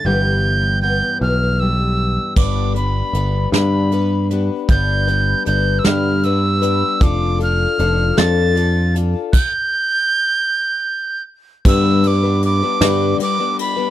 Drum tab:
CC |------|x-----|------|------|
RD |------|------|------|------|
HH |------|-xxxxx|xxxxxx|xxxxxx|
SD |------|---o--|---o--|---o--|
BD |------|o-----|o-----|o-----|

CC |x-----|x-----|
RD |------|-xxxxx|
HH |------|------|
SD |------|---o--|
BD |o-----|o-----|